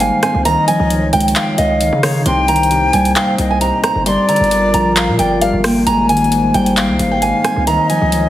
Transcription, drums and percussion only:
0.00 closed hi-hat
0.23 cross-stick, closed hi-hat
0.45 closed hi-hat
0.68 closed hi-hat
0.90 closed hi-hat
1.13 closed hi-hat
1.20 closed hi-hat
1.28 closed hi-hat
1.36 clap, closed hi-hat
1.58 closed hi-hat
1.81 closed hi-hat
2.03 cross-stick, open hi-hat
2.26 closed hi-hat
2.48 closed hi-hat
2.56 closed hi-hat
2.63 closed hi-hat
2.71 closed hi-hat
2.93 closed hi-hat
3.05 closed hi-hat
3.16 clap, closed hi-hat
3.38 closed hi-hat
3.61 closed hi-hat
3.84 cross-stick, closed hi-hat
4.06 closed hi-hat
4.29 closed hi-hat
4.36 closed hi-hat
4.44 closed hi-hat
4.51 closed hi-hat
4.74 closed hi-hat
4.96 clap, closed hi-hat
5.19 closed hi-hat
5.42 closed hi-hat
5.64 cross-stick, open hi-hat
5.87 closed hi-hat
6.09 closed hi-hat
6.17 closed hi-hat
6.24 closed hi-hat
6.32 closed hi-hat
6.54 closed hi-hat
6.66 closed hi-hat
6.77 clap, closed hi-hat
6.99 closed hi-hat
7.22 closed hi-hat
7.44 cross-stick, closed hi-hat
7.67 closed hi-hat
7.90 closed hi-hat
8.12 closed hi-hat

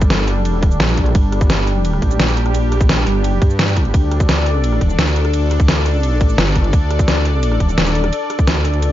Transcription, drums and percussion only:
0.02 kick, closed hi-hat, cabasa
0.10 snare, closed hi-hat, ride bell, cabasa
0.19 cross-stick
0.28 closed hi-hat, ride bell, cabasa
0.45 closed hi-hat, ride bell, cabasa
0.63 kick, closed hi-hat, ride bell, cabasa
0.71 cabasa
0.80 snare, closed hi-hat, ride bell
0.89 cabasa
0.97 kick, closed hi-hat, ride bell
1.06 closed hi-hat
1.15 kick, closed hi-hat, ride bell, cabasa
1.32 cross-stick, closed hi-hat, ride bell
1.41 kick, closed hi-hat, cabasa
1.50 snare, closed hi-hat, ride bell, cabasa
1.59 cross-stick
1.67 closed hi-hat, ride bell, cabasa
1.85 closed hi-hat, ride bell, cabasa
1.93 cross-stick
2.02 kick, closed hi-hat, ride bell
2.11 cabasa
2.20 snare, closed hi-hat, ride bell
2.28 cabasa
2.37 closed hi-hat, ride bell
2.46 cross-stick, closed hi-hat
2.54 closed hi-hat, ride bell, cabasa
2.72 cross-stick, closed hi-hat, ride bell, cabasa
2.81 kick, closed hi-hat, cabasa
2.89 snare, closed hi-hat, ride bell, cabasa
2.98 cross-stick
3.07 closed hi-hat, ride bell, cabasa
3.24 closed hi-hat, ride bell, cabasa
3.42 kick, closed hi-hat, ride bell, cabasa
3.50 cabasa
3.59 snare, closed hi-hat, ride bell
3.68 cabasa
3.77 kick, closed hi-hat, ride bell
3.85 closed hi-hat
3.94 kick, closed hi-hat, ride bell, cabasa
4.11 cross-stick, closed hi-hat, ride bell
4.20 kick, closed hi-hat, cabasa
4.29 snare, closed hi-hat, ride bell, cabasa
4.38 cross-stick
4.46 closed hi-hat, ride bell, cabasa
4.64 closed hi-hat, ride bell, cabasa
4.72 cross-stick
4.81 kick, closed hi-hat, ride bell
4.90 cabasa
4.99 snare, closed hi-hat, ride bell
5.07 cabasa
5.16 closed hi-hat, ride bell
5.25 cross-stick, closed hi-hat
5.34 closed hi-hat, ride bell, cabasa
5.51 cross-stick, closed hi-hat, ride bell, cabasa
5.60 kick, closed hi-hat, cabasa
5.68 snare, closed hi-hat, ride bell, cabasa
5.77 cross-stick
5.86 closed hi-hat, ride bell, cabasa
6.03 closed hi-hat, ride bell, cabasa
6.21 kick, closed hi-hat, ride bell, cabasa
6.29 cabasa
6.38 snare, closed hi-hat, ride bell
6.47 cabasa
6.56 kick, closed hi-hat, ride bell
6.64 closed hi-hat
6.73 kick, closed hi-hat, ride bell, cabasa
6.91 cross-stick, closed hi-hat, ride bell
6.99 kick, closed hi-hat, cabasa
7.08 snare, closed hi-hat, ride bell, cabasa
7.17 cross-stick
7.25 closed hi-hat, ride bell, cabasa
7.43 closed hi-hat, ride bell, cabasa
7.52 cross-stick
7.60 kick, closed hi-hat, ride bell
7.69 cabasa
7.78 snare, closed hi-hat, ride bell
7.86 cabasa
7.95 closed hi-hat, ride bell
8.04 cross-stick, closed hi-hat
8.13 closed hi-hat, ride bell, cabasa
8.30 cross-stick, closed hi-hat, ride bell, cabasa
8.39 kick, closed hi-hat, cabasa
8.47 snare, closed hi-hat, ride bell, cabasa
8.56 cross-stick
8.65 closed hi-hat, ride bell, cabasa
8.74 closed hi-hat
8.82 closed hi-hat, ride bell, cabasa

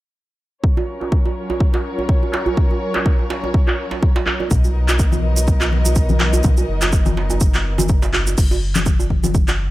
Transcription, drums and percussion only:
0.64 kick
0.77 djembe tone
1.01 clap, djembe tone
1.12 kick
1.26 djembe tone
1.50 djembe tone
1.60 kick
1.74 clap, djembe slap, djembe tone
1.99 djembe tone
2.09 kick
2.23 djembe tone
2.33 clap, djembe slap
2.46 djembe tone, djembe bass
2.57 kick
2.71 djembe tone
2.94 clap, djembe slap, djembe tone
3.06 kick
3.19 djembe tone
3.30 djembe slap
3.44 djembe tone
3.54 kick
3.68 clap, djembe tone
3.91 djembe slap, djembe tone
4.03 kick
4.16 djembe slap, djembe tone
4.26 clap, djembe bass
4.40 djembe tone
4.51 kick, low conga, maracas
4.64 djembe tone, maracas
4.88 clap, djembe tone, maracas
4.99 kick, maracas
5.12 high conga, djembe tone, maracas
5.37 djembe tone, maracas
5.47 kick, maracas
5.60 clap, djembe slap, djembe tone, maracas
5.72 high conga
5.85 djembe tone, maracas
5.95 kick, maracas
6.09 djembe tone, high conga, maracas
6.20 clap, djembe slap
6.33 djembe tone, djembe bass, maracas
6.43 kick, high conga, low conga, maracas
6.57 djembe tone, maracas
6.81 clap, djembe slap, djembe tone, maracas
6.92 kick, maracas
7.06 djembe tone, high conga, maracas
7.17 djembe slap
7.30 djembe tone, maracas
7.40 kick, maracas
7.54 clap, djembe tone, maracas
7.78 djembe slap, djembe tone, high conga, maracas
7.88 kick, maracas
8.02 djembe slap, djembe tone, maracas
8.14 clap, djembe bass
8.27 djembe tone, maracas
8.38 kick, crash, maracas
8.51 djembe tone, maracas
8.75 clap, high conga, djembe tone, maracas
8.86 kick, maracas
8.99 djembe tone, maracas
9.10 kick, high conga
9.23 djembe tone, high conga, maracas
9.34 kick, maracas
9.48 clap, djembe slap, djembe tone, maracas

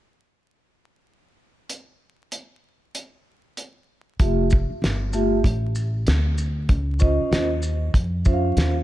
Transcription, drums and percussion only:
1.70 closed hi-hat
2.32 closed hi-hat
2.95 closed hi-hat
3.57 closed hi-hat
4.19 kick, closed hi-hat
4.50 kick, shaker
4.84 snare, closed hi-hat
5.13 shaker
5.44 kick, closed hi-hat
5.75 shaker
6.07 snare, closed hi-hat
6.38 shaker
6.69 kick, closed hi-hat
7.00 kick, shaker
7.33 snare, closed hi-hat
7.62 shaker
7.94 kick, closed hi-hat
8.25 kick, shaker
8.57 snare, closed hi-hat

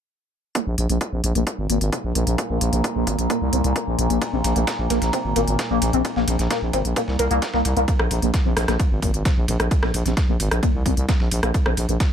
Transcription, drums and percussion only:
0.55 kick, closed hi-hat
0.78 closed hi-hat
0.89 closed hi-hat
1.01 kick, closed hi-hat
1.24 closed hi-hat
1.35 closed hi-hat
1.47 kick, closed hi-hat
1.70 closed hi-hat
1.81 closed hi-hat
1.92 kick, closed hi-hat
2.15 closed hi-hat
2.27 closed hi-hat
2.38 kick, closed hi-hat
2.61 closed hi-hat
2.73 closed hi-hat
2.84 kick, closed hi-hat
3.07 kick, closed hi-hat
3.19 closed hi-hat
3.30 kick, closed hi-hat
3.53 closed hi-hat
3.64 closed hi-hat
3.76 kick, closed hi-hat
3.99 closed hi-hat
4.10 closed hi-hat
4.22 kick, closed hi-hat, ride
4.44 closed hi-hat, ride
4.56 closed hi-hat
4.67 kick, snare, closed hi-hat, ride
4.90 snare, closed hi-hat, ride
5.02 snare, closed hi-hat
5.13 kick, closed hi-hat, ride
5.36 closed hi-hat, ride
5.47 closed hi-hat
5.59 kick, snare, closed hi-hat, ride
5.82 closed hi-hat, ride
5.93 closed hi-hat
6.05 kick, closed hi-hat, ride
6.16 snare
6.28 closed hi-hat, ride
6.39 snare, closed hi-hat
6.50 kick, snare, closed hi-hat, ride
6.73 kick, closed hi-hat, ride
6.85 closed hi-hat
6.96 kick, closed hi-hat, ride
7.08 snare
7.19 closed hi-hat, ride
7.31 closed hi-hat
7.42 kick, snare, closed hi-hat, ride
7.54 snare
7.65 closed hi-hat, ride
7.77 closed hi-hat
7.88 kick, closed hi-hat, ride
7.99 cross-stick
8.11 open hi-hat, ride
8.22 closed hi-hat
8.34 kick, snare, closed hi-hat, ride
8.57 cross-stick, snare, open hi-hat, ride
8.68 cross-stick, snare, closed hi-hat
8.80 kick, closed hi-hat, ride
9.02 kick, open hi-hat, ride
9.14 closed hi-hat
9.25 kick, snare, closed hi-hat, ride
9.48 open hi-hat, ride
9.60 cross-stick, closed hi-hat
9.71 kick, closed hi-hat, ride
9.83 cross-stick, snare
9.94 open hi-hat, ride
10.06 snare, closed hi-hat
10.17 kick, snare, closed hi-hat, ride
10.40 open hi-hat, ride
10.51 cross-stick, closed hi-hat
10.63 kick, closed hi-hat, ride
10.86 kick, open hi-hat, ride
10.97 closed hi-hat
11.09 kick, snare, closed hi-hat, ride
11.20 snare
11.31 open hi-hat, ride
11.43 cross-stick, closed hi-hat
11.54 kick, closed hi-hat, ride
11.66 cross-stick
11.77 open hi-hat, ride
11.89 closed hi-hat
12.00 kick, snare, closed hi-hat, ride

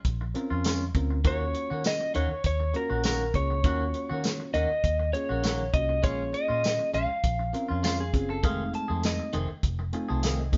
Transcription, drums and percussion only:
0.05 kick, closed hi-hat
0.35 closed hi-hat
0.64 snare, closed hi-hat, tambourine
0.95 kick, closed hi-hat
1.24 kick, closed hi-hat
1.54 closed hi-hat
1.84 snare, closed hi-hat, tambourine
2.14 closed hi-hat
2.44 kick, closed hi-hat
2.74 closed hi-hat
3.04 snare, closed hi-hat, tambourine
3.34 kick, closed hi-hat
3.64 kick, closed hi-hat
3.94 closed hi-hat
4.24 snare, closed hi-hat, tambourine
4.54 closed hi-hat
4.84 kick, closed hi-hat
5.14 closed hi-hat
5.44 snare, closed hi-hat, tambourine
5.74 kick, closed hi-hat
6.03 kick, closed hi-hat
6.34 closed hi-hat
6.64 snare, closed hi-hat, tambourine
6.94 closed hi-hat
7.24 kick, closed hi-hat
7.54 closed hi-hat
7.84 snare, closed hi-hat, tambourine
8.14 kick, closed hi-hat
8.44 kick, closed hi-hat
8.74 closed hi-hat
9.03 snare, closed hi-hat, tambourine
9.33 closed hi-hat
9.63 kick, closed hi-hat
9.93 closed hi-hat
10.23 snare, closed hi-hat, tambourine
10.53 kick, closed hi-hat

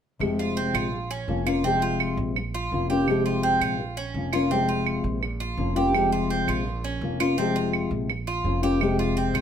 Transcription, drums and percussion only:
0.21 claves
0.75 claves
1.47 claves
2.00 claves
2.36 claves
3.08 claves
3.61 claves
4.33 claves
4.86 claves
5.23 claves
5.94 claves
6.48 claves
7.20 claves
7.73 claves
8.10 claves
8.81 claves
9.35 claves

